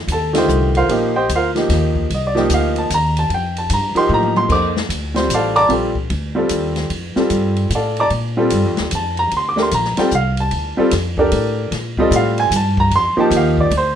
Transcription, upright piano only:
0.12 A4 A5
0.33 D3 D#3 A3 F4
0.37 G4 C5 D#5 G5
0.77 F4 A#4 C5 F5
0.89 F3 A#3 D#4 G4
1.16 G4 C5 D#5 G5
1.35 F4 A#4 C5 F5
1.55 F3 A#3 D#4 G4
2.14 D#5
2.27 D5
2.35 F3 A#3 D#4 G4
2.40 D#5
2.54 F5
2.78 A5
2.94 A#5
3.19 A5
3.34 G5
3.58 A5
3.73 A#5
3.95 F3 D#4 G4 A#4 C6
4.14 A#5
4.37 C6
4.49 A#3 D#4 A4 C5 D6
5.14 G3 C4 F4 C5
5.34 A4 D5 F5 A5
5.56 D5 A5 A#5 D6
5.69 G3 C4 F4 A4
6.35 G3 C4 F4 A4
7.16 G3 C4 F4 A4
7.75 A4 D5 F5 A5
8.00 D5 A5 A#5 D6
8.37 G3 C4 F4 A4
8.95 A5
9.19 A#5
9.37 C6
9.49 D6
9.56 A3 D4 G4 A#4
9.62 C6
9.74 A#5
9.97 G3 C4 F4 A4 G5
10.15 F5
10.40 A5
10.77 G3 C4 F4 A4
11.18 D4 G4 A4 A#4
11.98 G3 C4 F4 A4 D#5
12.16 F5
12.40 G#5
12.56 A5
12.80 A#5
12.96 C6
13.17 F3 A#3 D#4 G4 A5
13.36 F5
13.60 D5
13.77 C5

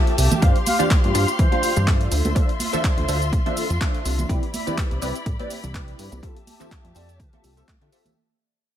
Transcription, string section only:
Already playing: G4 E5 A5
0.42 F5 C6
2.11 F4 E5 C6
4.29 E4 D5 B5
6.23 G4 E5 A5

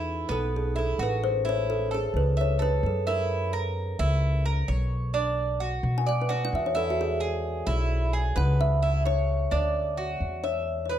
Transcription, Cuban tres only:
Already playing: E4
0.29 B3
0.76 E4
0.99 F#4
1.45 E4
1.91 A4
2.37 E5
2.59 A4
3.07 E4
3.53 A#4
3.99 E4
4.46 A#4
4.68 C#5
5.14 D4
5.60 F#4
6.07 D5
6.29 F#4
6.75 E4
7.20 G#4
7.67 E4
8.13 G#4
8.36 B4
8.82 E4
9.05 C#5
9.51 D4
9.97 F#4
10.44 E5
10.89 B4

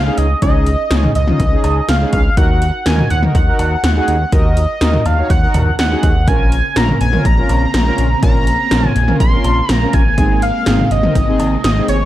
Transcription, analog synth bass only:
Already playing: C#2
0.18 C#2
0.42 C#2
0.91 C#2
1.15 C#2
1.40 C#2
1.64 C#2
1.88 C#2
2.13 C#2
2.37 D#2
2.86 D#2
3.10 D#2
3.35 D#2
3.59 D#2
3.84 D#2
4.08 D#2
4.32 D#2
4.81 D#2
5.06 D#2
5.30 D#2
5.54 D#2
5.79 D#2
6.03 D#2
6.28 A#1
6.76 A#1
7.01 A#1
7.25 A#1
7.49 A#1
7.74 A#1
7.98 A#1
8.23 A#1
8.71 A#1
8.96 A#1
9.20 A#1
9.45 A#1
9.69 A#1
9.93 A#1
10.18 G#1
10.67 G#1
10.91 G#1
11.15 G#1
11.40 G#1
11.64 G#1
11.89 G#1

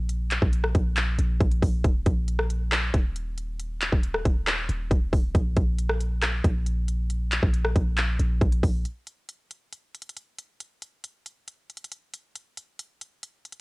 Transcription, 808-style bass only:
Already playing: A#1
0.42 A#1
0.75 A#1
1.19 A#1
1.41 A#1
1.62 A#1
1.84 D#1
2.06 A#1
2.94 D#1
3.92 D#1
4.25 D#1
4.69 D#1
4.91 D#1
5.13 D#1
5.35 A#1
5.57 A#1
6.44 A#1
7.43 A#1
7.76 A#1
8.19 A#1
8.41 A#1
8.63 A#1

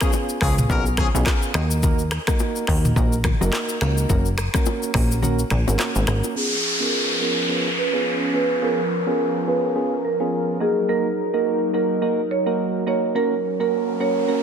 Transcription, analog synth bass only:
0.42 C#2
0.70 B1
1.15 B1
1.55 D#2
2.68 D#2
2.96 A#1
3.41 F#1
3.81 C#2
4.10 F#1
4.95 A#1
5.51 A#1
5.68 G#1
5.96 G#1
6.08 G#1

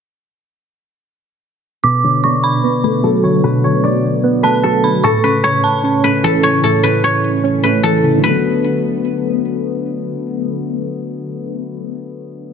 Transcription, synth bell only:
1.84 D6
2.24 C#6
2.44 B5
4.44 A5
4.84 B5
5.04 C#6
5.44 B5
5.64 A5

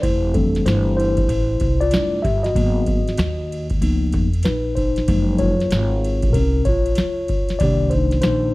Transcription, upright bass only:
0.03 F1
0.66 G1
1.29 A1
1.61 C2
1.93 F1
2.24 G1
2.56 G#1
3.18 D#2
3.81 C#2
4.14 F2
4.45 A#1
5.08 F#1
5.72 G#1
6.33 C2
6.66 A#1
6.98 C#2
7.61 C2
8.24 A#1

